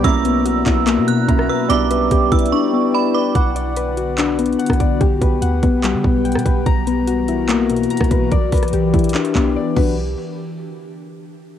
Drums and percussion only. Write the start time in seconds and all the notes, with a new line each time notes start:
0.04 kick, closed hi-hat
0.25 closed hi-hat
0.46 closed hi-hat
0.66 kick, clap, closed hi-hat
0.87 clap, closed hi-hat
1.08 closed hi-hat
1.28 kick, closed hi-hat
1.39 cross-stick
1.70 closed hi-hat
1.91 closed hi-hat
2.11 kick, closed hi-hat
2.32 kick, closed hi-hat
2.39 closed hi-hat
2.46 closed hi-hat
3.35 kick, closed hi-hat
3.56 closed hi-hat
3.76 closed hi-hat
3.97 closed hi-hat
4.18 clap, closed hi-hat
4.39 closed hi-hat
4.46 closed hi-hat
4.52 closed hi-hat
4.59 closed hi-hat
4.66 kick, cross-stick, closed hi-hat
4.73 closed hi-hat
4.80 kick, closed hi-hat
5.01 kick, closed hi-hat
5.21 kick, closed hi-hat
5.42 closed hi-hat
5.63 kick, closed hi-hat
5.84 clap, closed hi-hat
6.04 kick
6.25 closed hi-hat
6.32 cross-stick, closed hi-hat
6.39 closed hi-hat
6.46 kick, closed hi-hat
6.66 kick, closed hi-hat
6.87 closed hi-hat
7.08 closed hi-hat
7.28 closed hi-hat
7.49 clap, closed hi-hat
7.70 closed hi-hat
7.77 closed hi-hat
7.83 closed hi-hat
7.90 closed hi-hat
7.97 kick, cross-stick, closed hi-hat
8.04 closed hi-hat
8.11 kick, closed hi-hat
8.32 kick, closed hi-hat
8.52 kick, closed hi-hat, open hi-hat
8.58 closed hi-hat
8.63 cross-stick, closed hi-hat
8.68 closed hi-hat
8.73 closed hi-hat
8.94 kick, closed hi-hat
8.99 closed hi-hat
9.04 closed hi-hat
9.09 closed hi-hat
9.15 clap
9.25 closed hi-hat
9.35 kick, clap
9.77 kick, crash